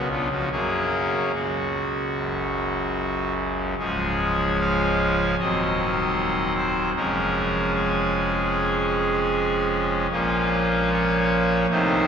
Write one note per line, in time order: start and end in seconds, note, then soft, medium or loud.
0.00 0.49 C#2 medium
0.00 0.50 C#3 medium
0.11 0.28 B3 soft
0.11 0.28 D4 soft
0.11 0.28 F4 medium
0.31 0.49 F3 soft
0.31 0.49 F#4 medium
0.51 1.31 F#2 medium
0.51 1.31 F#3 medium
0.51 1.31 A#3 soft
0.51 1.31 C#4 soft
0.51 1.31 G#4 medium
1.34 3.74 C#2 medium
1.34 3.74 C#3 medium
1.34 3.33 F#4 medium
2.16 3.74 F#1 soft
2.16 3.75 F#2 medium
3.78 5.35 C#1 medium
3.78 5.35 C#2 medium
3.78 5.35 F3 soft
3.78 5.35 G#3 soft
3.78 5.35 C#4 soft
3.78 4.58 G#4 medium
4.60 5.36 F5 loud
5.39 6.92 D#1 medium
5.39 6.92 D#2 medium
5.39 6.92 F#3 soft
5.39 6.92 C4 soft
5.39 6.53 D#5 medium
6.57 6.90 C5 medium
6.96 10.07 F1 medium
6.96 10.07 F2 medium
6.96 10.07 F3 medium
6.96 10.07 G#3 soft
6.96 10.07 C#4 soft
6.96 7.72 A#4 medium
7.75 9.67 G#4 medium
10.11 11.66 A#1 medium
10.11 11.66 A#2 medium
10.11 11.66 F3 soft
10.11 11.66 A#3 soft
10.11 11.66 C#4 soft
10.11 10.90 F4 medium
10.92 11.67 C#5 loud
11.70 12.07 C2 medium
11.70 12.07 C3 medium
11.70 12.07 D#3 medium
11.70 12.07 A3 medium
11.70 12.07 D#4 soft
11.70 12.07 C5 medium